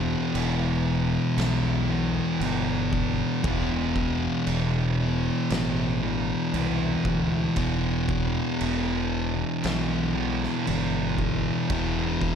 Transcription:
Already playing: fingered electric bass E1, distorted electric guitar E2 B2 E3
0.35 fingered electric bass E1, crash
1.37 fingered electric bass B1, snare, crash
1.90 distorted electric guitar E2 B2 E3
2.40 fingered electric bass G1, distorted electric guitar E2 B2 E3, crash
2.93 kick
3.44 fingered electric bass E1, distorted electric guitar E2 B2 E3, kick, crash
3.96 kick
4.47 fingered electric bass E1, crash
5.50 fingered electric bass A1, snare, crash
6.02 distorted electric guitar E2 B2 E3
6.54 fingered electric bass C2, distorted electric guitar E2 B2 E3, crash
7.05 fingered electric bass D2, kick
7.56 fingered electric bass E1, distorted electric guitar E2 B2 E3, kick, crash
8.09 kick
8.61 fingered electric bass E1, crash
9.64 fingered electric bass B1, snare, crash
10.15 distorted electric guitar E2 B2 E3
10.44 snare
10.66 fingered electric bass G1, distorted electric guitar E2 B2 E3, crash
11.18 kick
11.69 fingered electric bass E1, distorted electric guitar E2 B2 E3, kick, crash
12.21 kick

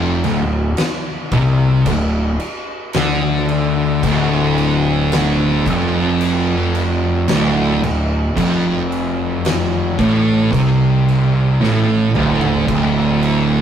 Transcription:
Already playing: picked electric bass F1, distorted electric guitar F2
0.24 picked electric bass D1, distorted electric guitar D2, snare, crash
0.77 snare, crash
1.31 picked electric bass C2, distorted electric guitar C3, kick, crash
1.86 picked electric bass D1, distorted electric guitar D2, kick, crash
2.40 crash
2.93 picked electric bass D2, distorted electric guitar D3, snare, crash
3.49 crash
4.03 picked electric bass D1, distorted electric guitar D2, kick, crash
4.58 crash
5.12 snare, crash
5.66 picked electric bass F1, distorted electric guitar F2, kick, crash
6.21 crash
6.75 crash
7.28 picked electric bass D1, distorted electric guitar D2, snare, crash
7.83 picked electric bass D1, distorted electric guitar D2, crash
8.37 picked electric bass F1, distorted electric guitar F2, kick, crash
8.92 crash
9.45 snare, crash
9.98 picked electric bass A1, distorted electric guitar A2, kick, crash
10.52 picked electric bass C2, distorted electric guitar C3, kick, crash
11.09 crash
11.61 picked electric bass A1, distorted electric guitar A2, snare
12.15 picked electric bass D1, distorted electric guitar D2, mid tom
12.41 floor tom
12.68 picked electric bass D1, distorted electric guitar D2, kick, crash
13.23 crash

